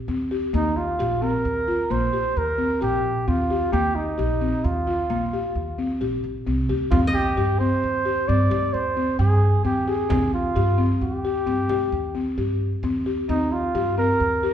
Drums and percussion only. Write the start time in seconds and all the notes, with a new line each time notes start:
6.91 frame drum
7.83 frame drum
8.51 frame drum
8.74 frame drum
8.97 frame drum
9.42 frame drum
10.10 frame drum
11.01 frame drum
11.69 frame drum
11.92 frame drum
12.61 frame drum